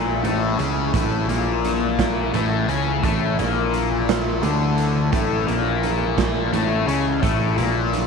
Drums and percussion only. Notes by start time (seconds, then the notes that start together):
0.24 closed hi-hat, high conga, low conga
0.59 closed hi-hat, low conga
0.77 low conga
0.94 kick, closed hi-hat, high conga, low conga
1.29 closed hi-hat, low conga
1.64 closed hi-hat, high conga
1.83 low conga
1.99 kick, snare, closed hi-hat
2.34 closed hi-hat, high conga, low conga
2.69 closed hi-hat, low conga
2.87 low conga
3.03 kick, closed hi-hat, high conga, low conga
3.22 low conga
3.38 closed hi-hat, low conga
3.73 closed hi-hat, high conga
3.91 low conga
4.09 snare, closed hi-hat
4.43 closed hi-hat, high conga, low conga
4.78 closed hi-hat
4.96 low conga
5.13 kick, closed hi-hat, high conga, low conga
5.32 low conga
5.48 closed hi-hat, low conga
5.83 closed hi-hat, high conga
6.01 low conga
6.18 kick, snare, closed hi-hat
6.53 closed hi-hat, high conga, low conga
6.88 closed hi-hat
7.05 low conga
7.23 kick, closed hi-hat, high conga, low conga
7.41 low conga
7.58 closed hi-hat, low conga
7.93 closed hi-hat, high conga